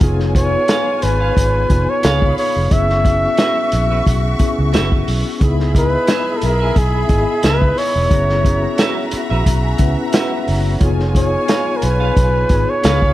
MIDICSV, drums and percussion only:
0, 0, Header, 1, 2, 480
1, 0, Start_track
1, 0, Tempo, 674916
1, 9, Time_signature, 4, 2, 24, 8
1, 9341, End_track
2, 0, Start_track
2, 0, Title_t, "Drums"
2, 6, Note_on_c, 9, 42, 87
2, 8, Note_on_c, 9, 36, 110
2, 78, Note_off_c, 9, 42, 0
2, 79, Note_off_c, 9, 36, 0
2, 141, Note_on_c, 9, 38, 31
2, 212, Note_off_c, 9, 38, 0
2, 248, Note_on_c, 9, 36, 99
2, 254, Note_on_c, 9, 42, 79
2, 319, Note_off_c, 9, 36, 0
2, 325, Note_off_c, 9, 42, 0
2, 484, Note_on_c, 9, 42, 88
2, 491, Note_on_c, 9, 38, 106
2, 555, Note_off_c, 9, 42, 0
2, 562, Note_off_c, 9, 38, 0
2, 727, Note_on_c, 9, 42, 89
2, 798, Note_off_c, 9, 42, 0
2, 973, Note_on_c, 9, 36, 93
2, 978, Note_on_c, 9, 42, 90
2, 1044, Note_off_c, 9, 36, 0
2, 1049, Note_off_c, 9, 42, 0
2, 1207, Note_on_c, 9, 42, 62
2, 1209, Note_on_c, 9, 36, 86
2, 1279, Note_off_c, 9, 42, 0
2, 1280, Note_off_c, 9, 36, 0
2, 1445, Note_on_c, 9, 42, 93
2, 1455, Note_on_c, 9, 38, 116
2, 1516, Note_off_c, 9, 42, 0
2, 1527, Note_off_c, 9, 38, 0
2, 1580, Note_on_c, 9, 36, 96
2, 1651, Note_off_c, 9, 36, 0
2, 1692, Note_on_c, 9, 46, 79
2, 1763, Note_off_c, 9, 46, 0
2, 1929, Note_on_c, 9, 42, 92
2, 1930, Note_on_c, 9, 36, 112
2, 2000, Note_off_c, 9, 42, 0
2, 2001, Note_off_c, 9, 36, 0
2, 2060, Note_on_c, 9, 38, 34
2, 2131, Note_off_c, 9, 38, 0
2, 2168, Note_on_c, 9, 36, 95
2, 2172, Note_on_c, 9, 42, 72
2, 2239, Note_off_c, 9, 36, 0
2, 2243, Note_off_c, 9, 42, 0
2, 2400, Note_on_c, 9, 42, 87
2, 2408, Note_on_c, 9, 38, 107
2, 2471, Note_off_c, 9, 42, 0
2, 2479, Note_off_c, 9, 38, 0
2, 2644, Note_on_c, 9, 42, 85
2, 2715, Note_off_c, 9, 42, 0
2, 2892, Note_on_c, 9, 36, 102
2, 2895, Note_on_c, 9, 42, 82
2, 2963, Note_off_c, 9, 36, 0
2, 2966, Note_off_c, 9, 42, 0
2, 3124, Note_on_c, 9, 42, 64
2, 3128, Note_on_c, 9, 36, 88
2, 3195, Note_off_c, 9, 42, 0
2, 3199, Note_off_c, 9, 36, 0
2, 3368, Note_on_c, 9, 42, 85
2, 3378, Note_on_c, 9, 38, 106
2, 3439, Note_off_c, 9, 42, 0
2, 3449, Note_off_c, 9, 38, 0
2, 3499, Note_on_c, 9, 36, 83
2, 3570, Note_off_c, 9, 36, 0
2, 3612, Note_on_c, 9, 46, 80
2, 3683, Note_off_c, 9, 46, 0
2, 3849, Note_on_c, 9, 36, 105
2, 3849, Note_on_c, 9, 42, 91
2, 3920, Note_off_c, 9, 36, 0
2, 3920, Note_off_c, 9, 42, 0
2, 3981, Note_on_c, 9, 38, 36
2, 4052, Note_off_c, 9, 38, 0
2, 4088, Note_on_c, 9, 36, 85
2, 4095, Note_on_c, 9, 42, 75
2, 4159, Note_off_c, 9, 36, 0
2, 4166, Note_off_c, 9, 42, 0
2, 4320, Note_on_c, 9, 42, 91
2, 4327, Note_on_c, 9, 38, 107
2, 4391, Note_off_c, 9, 42, 0
2, 4398, Note_off_c, 9, 38, 0
2, 4563, Note_on_c, 9, 42, 79
2, 4634, Note_off_c, 9, 42, 0
2, 4809, Note_on_c, 9, 36, 98
2, 4809, Note_on_c, 9, 42, 77
2, 4880, Note_off_c, 9, 36, 0
2, 4880, Note_off_c, 9, 42, 0
2, 5042, Note_on_c, 9, 42, 63
2, 5046, Note_on_c, 9, 36, 86
2, 5113, Note_off_c, 9, 42, 0
2, 5117, Note_off_c, 9, 36, 0
2, 5283, Note_on_c, 9, 42, 97
2, 5294, Note_on_c, 9, 38, 114
2, 5354, Note_off_c, 9, 42, 0
2, 5365, Note_off_c, 9, 38, 0
2, 5418, Note_on_c, 9, 36, 78
2, 5489, Note_off_c, 9, 36, 0
2, 5532, Note_on_c, 9, 46, 79
2, 5603, Note_off_c, 9, 46, 0
2, 5767, Note_on_c, 9, 36, 105
2, 5768, Note_on_c, 9, 42, 89
2, 5838, Note_off_c, 9, 36, 0
2, 5839, Note_off_c, 9, 42, 0
2, 5900, Note_on_c, 9, 38, 34
2, 5971, Note_off_c, 9, 38, 0
2, 6007, Note_on_c, 9, 36, 92
2, 6013, Note_on_c, 9, 42, 73
2, 6078, Note_off_c, 9, 36, 0
2, 6085, Note_off_c, 9, 42, 0
2, 6244, Note_on_c, 9, 42, 96
2, 6251, Note_on_c, 9, 38, 103
2, 6315, Note_off_c, 9, 42, 0
2, 6322, Note_off_c, 9, 38, 0
2, 6481, Note_on_c, 9, 42, 88
2, 6552, Note_off_c, 9, 42, 0
2, 6730, Note_on_c, 9, 36, 90
2, 6731, Note_on_c, 9, 42, 90
2, 6801, Note_off_c, 9, 36, 0
2, 6802, Note_off_c, 9, 42, 0
2, 6958, Note_on_c, 9, 42, 64
2, 6965, Note_on_c, 9, 36, 89
2, 7029, Note_off_c, 9, 42, 0
2, 7036, Note_off_c, 9, 36, 0
2, 7201, Note_on_c, 9, 42, 100
2, 7212, Note_on_c, 9, 38, 112
2, 7272, Note_off_c, 9, 42, 0
2, 7283, Note_off_c, 9, 38, 0
2, 7450, Note_on_c, 9, 46, 78
2, 7521, Note_off_c, 9, 46, 0
2, 7686, Note_on_c, 9, 42, 102
2, 7688, Note_on_c, 9, 36, 105
2, 7757, Note_off_c, 9, 42, 0
2, 7760, Note_off_c, 9, 36, 0
2, 7821, Note_on_c, 9, 38, 31
2, 7892, Note_off_c, 9, 38, 0
2, 7929, Note_on_c, 9, 36, 86
2, 7935, Note_on_c, 9, 42, 67
2, 8000, Note_off_c, 9, 36, 0
2, 8006, Note_off_c, 9, 42, 0
2, 8167, Note_on_c, 9, 42, 90
2, 8174, Note_on_c, 9, 38, 123
2, 8238, Note_off_c, 9, 42, 0
2, 8245, Note_off_c, 9, 38, 0
2, 8407, Note_on_c, 9, 42, 88
2, 8478, Note_off_c, 9, 42, 0
2, 8652, Note_on_c, 9, 36, 93
2, 8654, Note_on_c, 9, 42, 79
2, 8724, Note_off_c, 9, 36, 0
2, 8725, Note_off_c, 9, 42, 0
2, 8885, Note_on_c, 9, 42, 71
2, 8889, Note_on_c, 9, 36, 98
2, 8956, Note_off_c, 9, 42, 0
2, 8960, Note_off_c, 9, 36, 0
2, 9128, Note_on_c, 9, 42, 88
2, 9139, Note_on_c, 9, 38, 110
2, 9199, Note_off_c, 9, 42, 0
2, 9210, Note_off_c, 9, 38, 0
2, 9261, Note_on_c, 9, 36, 84
2, 9333, Note_off_c, 9, 36, 0
2, 9341, End_track
0, 0, End_of_file